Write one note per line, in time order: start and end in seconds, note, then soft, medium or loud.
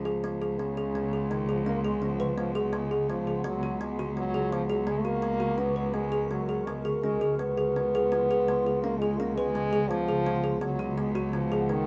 0.00 3.45 C#2 medium
0.00 10.58 C#3 medium
0.00 0.60 F3 medium
0.00 5.19 B3 medium
0.00 3.41 F4 medium
0.05 0.20 G#4 medium
0.24 0.38 B3 medium
0.42 0.56 G#4 medium
0.59 1.32 C#3 medium
0.59 0.74 B3 medium
0.77 0.91 G#4 medium
0.95 1.09 B3 medium
1.13 1.27 G#4 medium
1.31 1.49 D#3 medium
1.31 1.45 B3 medium
1.49 1.65 F3 loud
1.49 1.63 G#4 medium
1.66 1.83 A#3 loud
1.66 1.81 C#4 medium
1.84 2.01 G#3 loud
1.84 1.99 G#4 medium
2.02 2.36 F3 medium
2.02 2.16 C#4 medium
2.20 2.34 B4 medium
2.38 2.54 F3 loud
2.38 2.52 B3 medium
2.55 2.76 F#3 medium
2.55 2.70 G#4 medium
2.73 3.09 G#3 loud
2.73 2.87 B3 loud
2.91 3.06 G#4 medium
3.10 3.43 F3 loud
3.10 3.24 B3 medium
3.27 3.41 G#4 medium
3.44 7.02 C#2 medium
3.44 3.83 F#3 loud
3.44 3.59 B3 loud
3.44 7.00 F#4 medium
3.63 3.77 F#4 medium
3.81 4.15 G#3 medium
3.81 3.95 B3 medium
3.99 4.13 F#4 medium
4.16 4.54 F#3 loud
4.16 4.31 B3 medium
4.34 4.48 G#4 medium
4.52 4.65 F3 loud
4.52 4.66 B3 medium
4.65 4.72 F3 medium
4.70 4.89 F#3 loud
4.70 4.84 G#4 medium
4.87 5.00 G#3 loud
4.87 5.01 B3 medium
4.98 5.06 A3 medium
5.04 5.59 A#3 loud
5.04 5.19 F#4 medium
5.22 5.37 B3 medium
5.22 7.02 A#4 medium
5.40 5.55 F#4 medium
5.58 5.95 B3 loud
5.58 5.73 C#4 medium
5.76 5.91 B4 medium
5.94 6.29 G#3 loud
5.94 6.09 B3 medium
6.12 6.27 G#4 medium
6.30 6.68 F#3 medium
6.30 6.45 B3 medium
6.49 6.63 G#4 medium
6.66 6.85 G#3 medium
6.66 6.82 B3 medium
6.85 6.99 G#4 medium
7.02 10.62 C#2 medium
7.02 7.36 G#3 loud
7.02 11.87 B3 medium
7.02 7.18 C#4 medium
7.02 10.58 F4 medium
7.21 7.36 G#4 medium
7.39 8.79 B3 loud
7.39 7.54 B3 medium
7.57 7.72 G#4 medium
7.76 7.90 B3 medium
7.95 8.09 G#4 medium
8.12 8.26 B3 medium
8.31 8.45 G#4 medium
8.48 8.62 B3 medium
8.66 8.80 G#4 medium
8.82 9.01 A#3 loud
8.82 8.98 C#4 medium
8.99 9.19 G#3 loud
8.99 9.16 G#4 medium
9.18 9.37 A#3 medium
9.18 9.34 C#4 medium
9.35 9.91 G#3 loud
9.35 9.51 B4 medium
9.55 9.69 B3 medium
9.73 9.87 G#4 medium
9.90 10.61 F3 loud
9.90 10.05 B3 loud
10.08 10.23 G#4 medium
10.26 10.40 B3 medium
10.44 10.58 G#4 medium
10.61 11.87 C#2 loud
10.61 11.87 C#3 medium
10.61 10.99 F#3 loud
10.61 10.76 B3 loud
10.61 11.87 F#5 medium
10.79 10.94 F#4 medium
10.98 11.14 G#3 medium
10.98 11.12 B3 medium
11.14 11.36 F#3 medium
11.14 11.30 F#4 medium
11.33 11.72 F3 loud
11.33 11.48 B3 medium
11.52 11.66 G#4 medium
11.69 11.87 D#3 loud
11.69 11.84 B3 medium